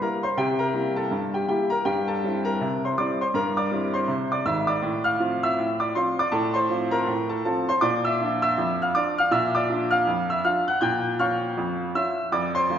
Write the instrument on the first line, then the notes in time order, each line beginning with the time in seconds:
upright piano
0.02 G3 A#3 E4 A#4 A#5
0.23 C5 C6
0.37 C3 G4 G5
0.59 A#4 A#5
0.74 G3 A#3 E4
0.96 A4 A5
1.11 G2
1.34 G4 G5
1.48 G3 A#3 E4 G4 G5
1.70 A#4 A#5
1.85 G2 G4 G5
2.08 A4 A5
2.24 G3 C4 E4
2.45 A#4 A#5
2.61 C3
2.85 C5 C6
2.98 G3 C4 E4 D5 D6
3.21 C5 C6
3.34 G2 A#4 A#5
3.57 D5 D6
3.72 G3 C4 E4
3.94 C5 C6
4.08 C3
4.32 D5 D6
4.45 G#1 G#2 E5 E6
4.67 D5 D6
4.82 A2
5.04 F5 F6
5.20 F3 C4 F4
5.43 E5 E6
5.59 A2
5.80 D5 D6
5.95 F3 C4 F4 C5 C6
6.19 D5 D6
6.32 A2 A4 A5
6.54 C5 C6
6.70 F3 C4 F4
6.91 A#4 A#5
7.08 A2
7.29 A4 A5
7.45 F3 C4 F4 A4 A5
7.69 C5 C6
7.81 A#2 D5 D6
8.05 E5 E6
8.21 F3 D4 F4
8.42 E5 E6
8.58 F2
8.82 F5 F6
8.95 F3 D4 F4 D5 D6
9.18 F5 F6
9.31 A#2 E5 E6
9.55 D5 D6
9.70 F3 D4 F4
9.91 F5 F6
10.07 F2
10.30 E5 E6
10.45 F3 D4 F4 F5 F6
10.68 F#5 F#6
10.81 A#2 G5 G6
11.19 F3 C#4 F4 F5 C#6 F6
11.58 F2
11.95 F3 C#4 F4 E5 E6
12.32 F2 D5 D6
12.55 C5 C6
12.70 F3 A3 F4